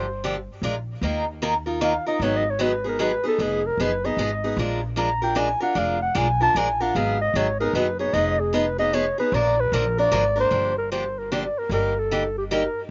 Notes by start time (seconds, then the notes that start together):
Already playing: G1 C5
0.24 D3 F3 A#3 D4 G4
0.62 A#1 F3 G#3 D4 F4 A#4
1.01 D#2 D#3 A#3 D#4 F4 A#4
1.42 D#3 A#3 D#4 F4 A#4
1.66 D#4 F4 A#4
1.81 D#3 A#3 D#4 F4 A#4 F5
2.06 D#4 F4 A#4 D#5
2.20 G#1 D#3 F#3 B3 D#4 G#4 C#5
2.37 D#5
2.50 C#5
2.59 D#3 F#3 B3 D#4 G#4 B4
2.84 B3 D#4 G#4
2.88 A#4
2.99 D#3 F#3 B3 D#4 G#4 B4
3.24 B3 D#4 G#4 A4
3.38 F1 F3 B3 D#4 G#4
3.43 G#4
3.67 A#4
3.77 F#1 F3 B3 D#4 G#4 B4
4.04 B3 D#4 G#4 D#5
4.17 G#1 F3 B3 D#4 G#4
4.44 B3 D#4 G#4
4.57 A#1 F3 G#3 D4 F4 A#4
4.96 F3 G#3 D4 F4 A#4 A#5
5.22 D4 F4 A#4 G5
5.35 F3 G#3 D4 F4 A#4 G#5
5.60 D4 F4 A#4 F#5
5.75 F1 F3 G#3 D4 F4 A#4 F5
6.02 F#5
6.15 B1 F3 G#3 D4 F4 A#4 G#5
6.41 D4 F4 A#4 A5
6.55 A#1 F3 G#3 D4 F4 A#4 G#5
6.80 D4 F4 A#4 F#5
6.95 G#1 D#3 F#3 B3 D#4 G#4 F5
7.21 D#5
7.34 G#1 D#3 F#3 B3 D#4 G#4 C#5
7.60 B3 D#4 G#4 A#4
7.73 F#1 D#3 F#3 B3 D#4 G#4 B4
7.99 B3 D#4 G#4 C#5
8.13 F1 F3 B3 D#4 G#4 D#5
8.40 G#4
8.53 F3 B3 D#4 G#4 B4
8.78 B3 D#4 G#4 D#5
8.93 F3 B3 D#4 G#4 C#5
9.18 B3 D#4 G#4 B4
9.32 A#1 D3 F3 A#3 D4 A#4 D5
9.60 B4
9.72 A#1 D3 F3 A#3 D4 A#4
9.98 A#3 D4 A#4 D5
10.11 G#1 D3 F3 A#3 D4 A#4
10.36 A#3 D4 A#4
10.40 C5
10.51 G1 D3 F3 A#3 D4 G4
10.78 A#4
10.92 D3 F3 A#3 D4 G4 C5
11.19 A#4
11.32 D3 F3 A#3 D4 G4 D5
11.58 A#4
11.69 G1 D3 G3 A#3 D#4 G4 A#4
11.99 A4
12.11 D3 G3 A#3 D#4 G4
12.38 G4
12.51 D3 G3 A#3 D#4 G4 A#4